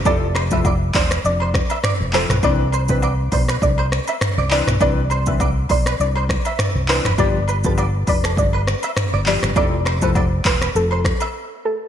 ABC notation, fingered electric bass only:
X:1
M:4/4
L:1/16
Q:"Swing 16ths" 1/4=101
K:C
V:1 name="Fingered electric bass" clef=bass
F,,,6 E,,,2 F,,,3 z2 F,,,2 B,,, | C,,6 B,,,2 C,,3 z2 C,,2 B,,, | C,,6 B,,,2 C,,3 z2 C,,2 F,,, | G,,,6 F,,,2 G,,,3 z2 G,,,2 G,,, |
F,,,6 E,,,2 F,,,3 z4 z |]